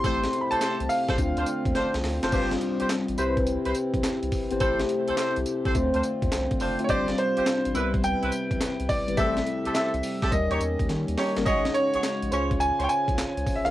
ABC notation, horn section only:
X:1
M:4/4
L:1/16
Q:"Swing 16ths" 1/4=105
K:Am
V:1 name="Horn section"
[GAc] z2 [GAc] [GAc] z2 [GAc] z [DFc] z2 [DFc] z2 [DFc] | [FGc] z2 [FGc] z2 [EBc] z2 [EBc] z6 | [GAc] z2 [GAc] [GAc] z2 [GAc] z [DFc] z4 [DFc] z | [FGc] z2 [FGc] z2 [CEB] z2 [CEB] z6 |
[CGA] z2 [CGA] [CGA] z2 [CGA] z [^DG^c] z4 [DGc] z | [K:Abmix] [GAd] z2 [GAd] z2 [Fcd] z2 [Fcd] z6 |]